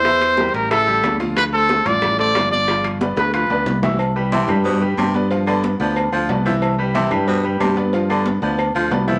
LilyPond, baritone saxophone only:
\new Staff \with { instrumentName = "Baritone saxophone" } { \clef bass \time 4/4 \key c \major \tempo 4 = 183 r1 | r1 | r1 | r4 c4 b,4 c4 |
r8 d4 f4 f4 f8 | r4 c4 b,4 c4 | r8 d4 f4 f4 f8 | }